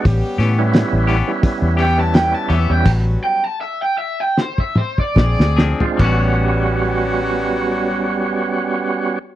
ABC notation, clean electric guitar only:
X:1
M:4/4
L:1/8
Q:"Swing 16ths" 1/4=77
K:Amix
V:1 name="Clean electric guitar"
z [E,B,CG] z [E,B,CG] z [E,B,CG] z [E,B,CG] | z6 z [=F,=CD_A] | [G,B,CF]8 |]